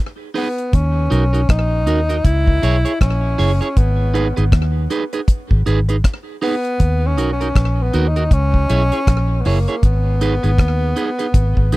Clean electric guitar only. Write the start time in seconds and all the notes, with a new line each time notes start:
0.34 D#4 G#4 B4
1.10 D#4 F#4 A#4
1.33 D#4 F#4 A#4
1.87 D#4 F#4 A#4
2.09 D#4 F#4 A#4
2.63 E4 G#4 C#5
2.85 E4 G#4 C#5
3.38 E4 G#4 C#5
3.61 E4 G#4 C#5
4.14 D#4 G#4 B4
4.37 D#4 G#4 B4
4.90 D#4 G#4 B4
5.13 D#4 G#4 B4
5.66 D#4 G#4 B4
5.89 D#4 G#4 B4
6.42 D#4 G#4 B4
7.18 D#4 F#4 A#4
7.41 D#4 F#4 A#4
7.94 D#4 F#4 A#4
8.16 D#4 F#4 A#4
8.70 E4 G#4 C#5
8.92 E4 G#4 C#5
9.46 E4 G#4 C#5
9.68 E4 G#4 C#5
10.21 D#4 G#4 B4
10.43 D#4 G#4 B4
10.96 D#4 G#4 B4
11.19 D#4 G#4 B4
11.73 D#4 G#4 B4